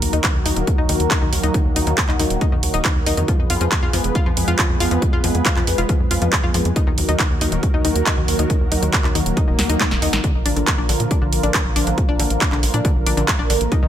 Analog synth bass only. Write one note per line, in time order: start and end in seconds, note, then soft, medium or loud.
0.02 0.09 D#2 medium
0.13 0.20 D#2 medium
0.35 0.42 D#2 medium
0.46 0.53 D#2 loud
0.56 0.63 D#1 loud
0.78 0.85 D#2 medium
0.89 0.96 D#2 loud
1.00 1.07 D#2 medium
1.22 1.29 D#2 medium
1.33 1.39 D#2 loud
1.43 1.50 D#2 medium
1.65 1.72 D#2 medium
1.76 1.83 D#2 medium
1.87 1.94 D#2 medium
2.09 2.16 D#2 medium
2.19 2.26 D#2 loud
2.30 2.37 D#1 medium
2.52 2.59 F2 medium
2.63 2.70 D#2 medium
2.74 2.81 D#1 medium
2.96 3.03 D#2 medium
3.06 3.13 D#2 medium
3.17 3.24 F2 medium
3.39 3.46 F2 medium
3.50 3.57 F2 loud
3.61 3.68 F2 medium
3.83 3.90 F2 medium
3.93 4.00 F2 loud
4.04 4.11 F1 medium
4.26 4.33 F2 medium
4.37 4.44 F2 loud
4.48 4.55 F2 medium
4.70 4.76 F2 medium
4.80 4.87 F2 loud
4.91 4.98 F2 medium
5.13 5.20 F2 medium
5.24 5.31 F2 loud
5.35 5.42 F2 medium
5.57 5.63 F2 medium
5.67 5.74 F2 loud
5.78 5.85 F1 loud
6.00 6.07 F2 medium
6.11 6.18 F2 loud
6.22 6.29 F2 medium
6.43 6.50 F2 medium
6.54 6.61 F2 medium
6.65 6.72 F2 medium
6.87 6.94 D#2 medium
6.98 7.05 D#2 loud
7.09 7.16 D#2 medium
7.30 7.37 D#2 medium
7.41 7.48 D#2 loud
7.52 7.59 D#1 medium
7.74 7.81 D#2 medium
7.85 7.92 D#2 loud
7.96 8.03 D#2 medium
8.17 8.24 D#2 medium
8.28 8.35 D#2 loud
8.39 8.46 D#2 medium
8.61 8.68 D#2 medium
8.72 8.79 D#2 loud
8.82 8.89 D#2 medium
9.04 9.11 D#2 medium
9.15 9.22 D#2 loud
9.26 9.33 D#1 loud
9.48 9.55 D#1 medium
9.59 9.66 D#2 loud
9.69 9.76 D#2 medium
9.91 9.98 D#1 medium
10.02 10.09 D#2 loud
10.13 10.20 A#1 medium
10.35 10.42 A#1 medium
10.46 10.53 A#1 loud
10.56 10.63 A#1 medium
10.78 10.85 A#1 medium
10.89 10.96 A#1 loud
11.00 11.07 A#2 loud
11.22 11.29 A#1 medium
11.33 11.39 A#1 medium
11.43 11.50 A#1 medium
11.65 11.72 A#1 medium
11.76 11.83 A#1 loud
11.87 11.94 A#1 medium
12.09 12.16 A#1 medium
12.19 12.26 A#1 loud
12.30 12.37 A#1 medium
12.52 12.59 A#1 medium
12.63 12.70 A#1 loud
12.74 12.81 A#2 loud
12.96 13.03 A#1 medium
13.06 13.13 A#1 loud
13.17 13.24 A#1 medium
13.39 13.46 A#1 medium
13.50 13.57 A#1 loud
13.61 13.68 A#1 medium
13.83 13.88 D#2 medium